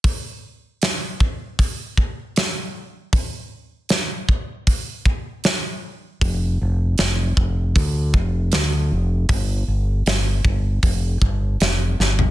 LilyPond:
<<
  \new Staff \with { instrumentName = "Fingered electric bass" } { \clef bass \time 4/4 \key d \dorian \tempo 4 = 78 r1 | r1 | f,,8 f,,8 f,,8 f,,8 d,8 f,,8 d,8 f,,8 | g,,8 g,,8 g,,8 g,,8 f,,8 g,,8 f,,8 g,,8 | }
  \new DrumStaff \with { instrumentName = "Drums" } \drummode { \time 4/4 <hho bd>4 <hho sn>8 bd8 <hho bd>8 bd8 <hho sn>4 | <hho bd>4 <hho sn>8 bd8 <hho bd>8 bd8 <hho sn>4 | <hho bd>4 <hho sn>8 bd8 <hho bd>8 bd8 <hho sn>4 | <hho bd>4 <hho sn>8 bd8 <hho bd>8 bd8 <hho sn>8 sn16 tomfh16 | }
>>